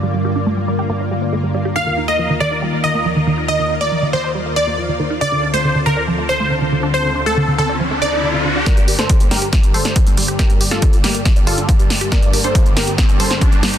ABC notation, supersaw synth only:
X:1
M:4/4
L:1/16
Q:1/4=139
K:Gm
V:1 name="Supersaw synth"
z16 | f2 z e2 z d2 z2 e2 z4 | e2 z d2 z c2 z2 d2 z4 | d2 z c2 z B2 z2 c2 z4 |
c2 z A2 z A2 z2 d2 z4 | [Bd]2 z [Ac]2 z [GB]2 z2 [Ac]2 z4 | [GB]2 z [FA]2 z [B,G]2 z2 [FA]2 z4 | [Bd]2 z [Ac]2 z [GB]2 z2 [Ac]2 z4 |]